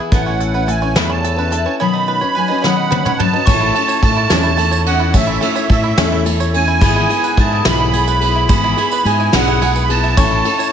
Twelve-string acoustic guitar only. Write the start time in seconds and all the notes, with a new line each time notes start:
Already playing: G#4
0.00 B3 E4
0.12 A3 C#4 E4 B4
0.54 C#4 E4 B4
0.67 A3 C#4 E4 B4
0.82 C#4 E4 B4
0.95 A3 C#4 E4 B4
1.36 C#4 E4 B4
1.51 A3 C#4 E4 B4
1.65 C#4 E4 B4
1.80 B2 D#3 F#3 C#4 D#4 B4
2.22 F#3 C#4 D#4 B4
2.36 F#3 C#4 B4
2.50 F#3 C#4 D#4 B4
2.64 B2 D#3 F#3 C#4 D#4 B4
3.05 F#3 C#4 D#4 B4
3.19 F#3 C#4 D#4 B4
3.33 F#3 C#4 D#4 B4
3.47 A2 E3 A3 C#4 E4 A4
3.75 A3 C#4 E4 A4
4.03 A3 C#4 E4 A4
4.32 A2 E3 A3 C#4 E4 A4
4.58 A3 C#4 E4 A4
4.86 A3 C#4 E4 A4
5.14 A2 E3 A3 C#4 E4 A4
5.42 A3 C#4 E4 A4
5.69 A3 C#4 E4 A4
5.98 A2 E3 A3 C#4 E4 A4
6.25 A3 C#4 E4 A4
6.53 A3 C#4 E4 A4
6.81 G#2 E3 G#3 B3 E4 G#4
7.08 G#3 B3 E4 G#4
7.36 G#3 B3 E4 G#4
7.64 G#2 E3 G#3 B3 E4 G#4
7.92 G#3 B3 E4 G#4
8.20 G#3 B3 E4 G#4
8.49 G#2 E3 G#3 B3 E4 G#4
8.77 G#3 B3 E4 G#4
9.04 G#3 B3 E4 G#4
9.32 G#2 E3 G#3 B3 E4 G#4
9.61 G#3 B3 E4 G#4
9.89 G#3 B3 E4 G#4
10.17 A2 E3 A3 C#4 E4 A4
10.46 A3 C#4 E4 A4